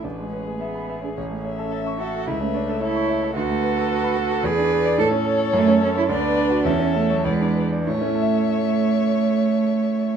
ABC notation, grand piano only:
X:1
M:2/4
L:1/16
Q:1/4=108
K:A
V:1 name="Grand piano"
A,,, G, B G e b e G | A,,, A, c A e c' e A | C,, A, c A e c' e A | D,, A, B A B b B A |
E,, D B d A,, C A c | F,, C A c D,, B, B F | E,, C A c E,, D B d | [A,,A,CEAe]8- |
[A,,A,CEAe]8 |]